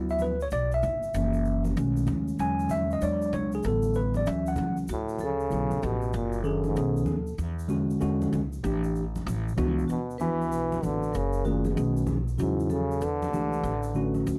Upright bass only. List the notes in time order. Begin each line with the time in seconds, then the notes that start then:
Already playing: D2
0.52 B1
0.83 G1
1.14 F#1
1.77 B1
2.08 D#2
2.39 E2
3.02 E2
3.33 C#2
3.64 A1
4.27 D2
4.58 C#2
4.89 D2
5.52 B1
5.83 A1
6.14 F#1
6.77 B1
7.08 D#2
7.38 E2
8.01 E2
8.33 C#2
8.64 A1
9.26 A1
9.58 C#2
9.90 D2
10.52 B1
10.83 A1
11.15 F#1
11.77 B1
12.39 E2
13.02 E2
13.33 C#2
13.63 A1
14.27 D2